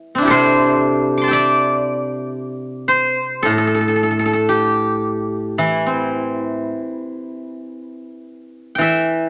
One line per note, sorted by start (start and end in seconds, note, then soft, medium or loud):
0.00 0.30 E3 soft
0.00 0.30 E5 medium
0.15 3.16 C4 soft
0.15 2.98 D4 soft
0.22 2.83 E4 soft
0.22 2.61 G4 soft
0.27 3.46 C3 medium
0.27 2.47 A4 medium
0.27 2.29 C5 medium
1.18 2.39 D6 soft
1.22 2.69 A5 soft
1.22 2.52 C6 soft
1.28 3.03 E5 medium
1.28 2.83 G5 soft
1.33 3.18 D5 medium
2.88 4.86 C5 medium
3.43 6.68 A2 soft
3.43 3.50 A4 medium
3.50 3.58 A4 soft
3.58 3.67 A4 medium
3.67 3.74 A4 soft
3.75 3.80 A4 soft
3.81 3.88 A4 soft
3.88 3.95 A4 soft
3.96 4.03 A4 soft
4.03 4.10 A4 soft
4.11 4.19 A4 soft
4.19 4.25 A4 soft
4.26 4.33 A4 soft
4.33 6.53 A4 soft
4.49 6.85 G4 medium
5.58 8.77 E3 soft
5.58 8.19 E4 soft
5.86 8.03 C4 soft
8.75 9.29 E3 soft
8.75 9.29 G5 soft
8.81 9.29 E5 medium